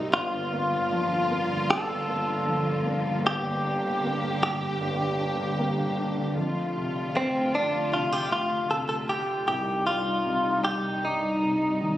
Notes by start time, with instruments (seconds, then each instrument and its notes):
Already playing: upright piano C2 C3 G3 D#4
0.13 upright piano G1 G2, string section G2 D3 A#3 F4, clean electric guitar F4
0.33 upright piano D3
0.53 upright piano A#3
0.72 upright piano D3
0.92 upright piano F3
1.11 upright piano D3
1.31 upright piano A#3
1.51 upright piano D3
1.70 upright piano G1 G2, clean electric guitar A4
1.89 upright piano D3
2.08 upright piano A#3
2.28 upright piano D3
2.47 upright piano F3
2.67 upright piano D3
2.85 upright piano A#3
3.05 upright piano D3
3.24 upright piano G1 G2, string section G4, clean electric guitar G4
3.45 upright piano D3
3.64 upright piano D4
3.84 upright piano D3
4.04 upright piano A#3
4.23 upright piano D3
4.42 upright piano D4, clean electric guitar G4
4.61 upright piano D3
4.81 upright piano G1 G2
5.01 upright piano D3
5.20 upright piano D4
5.39 upright piano D3
5.59 upright piano A#3
5.79 upright piano D3
5.98 upright piano D4
6.17 upright piano D3
6.37 string section F2 D3 A3 F4, upright piano F2
6.76 upright piano C3
7.14 upright piano A3, clean electric guitar C4
7.55 clean electric guitar D4
7.92 upright piano C3, clean electric guitar F4
8.12 clean electric guitar G4
8.31 upright piano A3, clean electric guitar F4
8.70 upright piano C3, clean electric guitar A4
8.89 clean electric guitar A4
9.09 clean electric guitar G4
9.48 string section C2 C3 G3 D#4, upright piano C2, clean electric guitar G4
9.87 upright piano G2, clean electric guitar F4
10.26 upright piano C3
10.65 clean electric guitar G4
11.04 upright piano G2, clean electric guitar D#4
11.43 upright piano C3
11.81 upright piano D#3